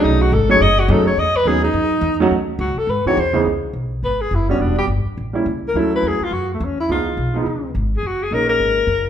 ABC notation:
X:1
M:4/4
L:1/16
Q:"Swing" 1/4=210
K:C#m
V:1 name="Alto saxophone"
D2 F2 A2 c2 d2 F2 A2 c2 | d2 B2 G2 D8- D2 | z4 F2 A2 B2 c2 ^B3 z | z8 B2 G2 E2 C2 |
=D2 =G2 z8 z2 _B2 | A2 B2 G2 ^E2 F2 A,2 C2 =E2 | ^E12 z2 G2 | F2 G2 ^A2 A8- A2 |]
V:2 name="Grand piano"
[F,A,CDG]4 z2 [F,A,CDG]2 z4 [F,A,CDG]2 z2 | z4 [F,B,CDG]2 z8 [F,A,CDF]2 | z8 z2 [E,G,^B,DF]2 z2 [C,,E,G,=B,DG]2 | z12 z2 [=G,B,=DF]2- |
[=G,B,=DF]4 z6 [G,_B,CE]2 z4 | [F,A,CE]6 z8 z2 | [^E,G,B,D]2 z4 [E,G,B,D]2 z8 | z4 [G,^A,CD]6 z6 |]
V:3 name="Upright bass" clef=bass
B,,,4 G,,,4 F,,,4 F,,4 | E,,2 z2 D,,4 F,,4 E,,4 | D,,4 C,,2 z2 G,,2 z2 E,,4 | C,,4 B,,,4 G,,,4 F,,,4 |
E,,,4 =G,,,2 z2 A,,,4 C,,4 | =D,,4 E,,2 z2 F,,4 E,,4 | C,,4 B,,,4 C,,4 G,,,4 | F,,,4 ^A,,,4 G,,,4 F,,,4 |]